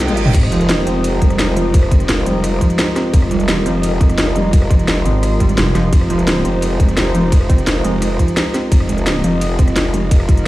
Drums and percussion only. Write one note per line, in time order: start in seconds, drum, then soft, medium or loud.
0.08 closed hi-hat soft
0.08 high tom medium
0.17 closed hi-hat medium
0.26 mid tom medium
0.34 kick loud
0.34 closed hi-hat loud
0.34 ride medium
0.34 crash medium
0.43 cross-stick medium
0.52 closed hi-hat medium
0.61 closed hi-hat soft
0.69 snare loud
0.69 closed hi-hat loud
0.69 ride medium
0.87 closed hi-hat medium
1.04 closed hi-hat loud
1.04 ride medium
1.22 kick loud
1.22 closed hi-hat medium
1.30 cross-stick soft
1.30 closed hi-hat soft
1.39 snare loud
1.39 closed hi-hat loud
1.39 ride medium
1.48 cross-stick soft
1.57 closed hi-hat medium
1.74 kick loud
1.74 closed hi-hat medium
1.74 ride medium
1.83 cross-stick medium
1.91 kick loud
1.91 closed hi-hat medium
2.00 closed hi-hat soft
2.09 snare loud
2.09 closed hi-hat loud
2.09 ride medium
2.26 closed hi-hat medium
2.44 cross-stick medium
2.44 closed hi-hat loud
2.44 ride medium
2.61 kick medium
2.61 closed hi-hat medium
2.70 closed hi-hat soft
2.79 snare loud
2.79 closed hi-hat medium
2.79 ride medium
2.87 cross-stick soft
2.96 cross-stick medium
2.96 snare soft
2.96 closed hi-hat medium
3.14 kick loud
3.14 closed hi-hat medium
3.14 ride medium
3.22 cross-stick medium
3.31 closed hi-hat medium
3.40 closed hi-hat soft
3.48 snare loud
3.48 closed hi-hat medium
3.48 ride medium
3.66 closed hi-hat medium
3.83 closed hi-hat medium
3.83 ride medium
4.01 kick loud
4.01 closed hi-hat medium
4.09 cross-stick soft
4.09 closed hi-hat soft
4.18 snare loud
4.18 closed hi-hat medium
4.18 ride medium
4.27 cross-stick soft
4.36 closed hi-hat medium
4.53 kick loud
4.53 closed hi-hat medium
4.53 ride medium
4.62 cross-stick soft
4.70 kick loud
4.70 closed hi-hat medium
4.79 closed hi-hat soft
4.88 snare loud
4.88 closed hi-hat medium
4.88 ride medium
5.06 closed hi-hat medium
5.23 cross-stick soft
5.23 closed hi-hat medium
5.23 ride medium
5.40 kick medium
5.40 closed hi-hat medium
5.49 closed hi-hat soft
5.58 snare loud
5.58 closed hi-hat medium
5.58 ride medium
5.66 cross-stick soft
5.75 cross-stick medium
5.75 snare soft
5.75 closed hi-hat medium
5.93 kick loud
5.93 closed hi-hat medium
5.93 ride medium
6.01 cross-stick soft
6.10 closed hi-hat medium
6.19 closed hi-hat soft
6.27 snare loud
6.27 closed hi-hat medium
6.27 ride medium
6.45 closed hi-hat medium
6.62 closed hi-hat medium
6.62 ride medium
6.80 kick loud
6.80 closed hi-hat medium
6.89 cross-stick soft
6.89 closed hi-hat soft
6.97 snare loud
6.97 closed hi-hat medium
6.97 ride medium
7.06 cross-stick soft
7.15 closed hi-hat medium
7.32 kick loud
7.32 closed hi-hat medium
7.32 ride medium
7.41 cross-stick soft
7.50 kick loud
7.50 closed hi-hat medium
7.58 closed hi-hat soft
7.67 snare loud
7.67 closed hi-hat loud
7.67 ride medium
7.84 closed hi-hat medium
8.02 cross-stick soft
8.02 closed hi-hat loud
8.02 ride medium
8.19 kick medium
8.19 closed hi-hat medium
8.28 closed hi-hat soft
8.37 snare loud
8.37 closed hi-hat medium
8.37 ride medium
8.46 cross-stick soft
8.54 cross-stick medium
8.54 snare soft
8.54 closed hi-hat medium
8.72 kick loud
8.72 closed hi-hat loud
8.72 ride medium
8.80 cross-stick soft
8.89 closed hi-hat medium
8.98 closed hi-hat soft
9.06 snare loud
9.06 closed hi-hat loud
9.06 ride medium
9.24 closed hi-hat medium
9.41 closed hi-hat loud
9.41 ride medium
9.59 kick loud
9.59 closed hi-hat medium
9.68 cross-stick soft
9.68 closed hi-hat soft
9.76 snare loud
9.76 closed hi-hat loud
9.76 ride medium
9.85 cross-stick soft
9.94 closed hi-hat medium
10.11 kick loud
10.11 closed hi-hat loud
10.11 ride medium
10.20 cross-stick medium
10.29 kick loud
10.29 closed hi-hat medium
10.37 closed hi-hat soft